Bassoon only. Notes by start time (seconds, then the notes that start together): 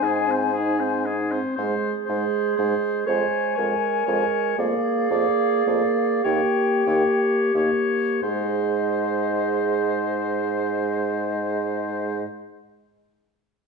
0.02 G#2
1.58 G#2
2.08 G#2
2.59 G#2
3.08 F2
3.58 F2
4.08 F2
4.58 F2
5.10 F2
5.67 F2
6.25 D#2
6.86 D#2
7.54 D#2
8.22 G#2